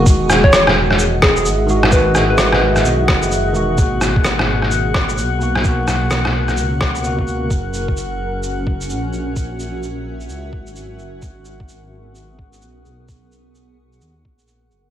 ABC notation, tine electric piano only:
X:1
M:4/4
L:1/16
Q:"Swing 16ths" 1/4=129
K:G#m
V:1 name="Tine electric piano"
[D,G,F]8- [D,G,F]2 z4 [D,G,F]2 | [D,G,F]8- [D,G,F]2 z4 [D,G,F]2 | [B,,A,F]8- [B,,A,F]2 z4 [B,,A,F]2 | [B,,A,F]8- [B,,A,F]2 z2 [B,,A,F] [B,,A,F]3 |
z16 | z16 | z16 | z16 |]